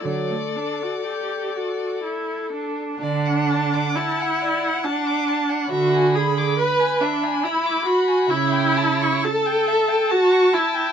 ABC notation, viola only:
X:1
M:3/4
L:1/16
Q:1/4=68
K:D
V:1 name="Viola"
F, A, D F G2 F2 E2 D2 | D4 E4 D4 | F2 ^G2 B2 D2 E2 F2 | E4 A4 F2 E2 |]